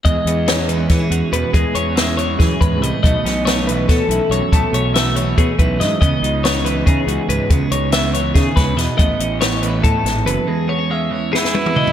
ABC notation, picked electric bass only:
X:1
M:7/8
L:1/16
Q:1/4=141
K:E
V:1 name="Picked electric bass" clef=bass
E,, z E,,6 E, z E,, z E,, z | E,, z E,,6 E, z E,,2 =C,, z | B,,, z B,,,6 B,, z B,,, z B,,, z | B,,, z B,,,6 B,, z B,,,2 G,, z |
C,, z C,,6 C, z C,, z C,, z | C,, z C,,6 C, z C,,2 E,, z | A,,, z A,,,6 A,, z A,,,2 F,,, z | z12 z2 |]